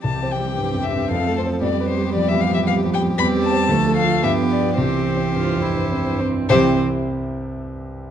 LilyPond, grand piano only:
\new Staff \with { instrumentName = "Grand piano" } { \clef bass \time 3/4 \key c \major \tempo 4 = 112 \tuplet 3/2 { c,8 c''8 g8 g,8 f,8 g,8 f,8 a8 <f' c''>8 } | \tuplet 3/2 { f,8 b'8 g8 f8 e8 f8 g8 f8 g'8 } | \tuplet 3/2 { e,8 g8 <g' c''>8 d,8 a8 <f' a'>8 g,8 b8 <f' g'>8 } | \tuplet 3/2 { c,8 g'8 c'8 g,8 f,8 g,8 c'8 g,8 e'8 } |
<c, c c' e' g' e''>8 r2 r8 | }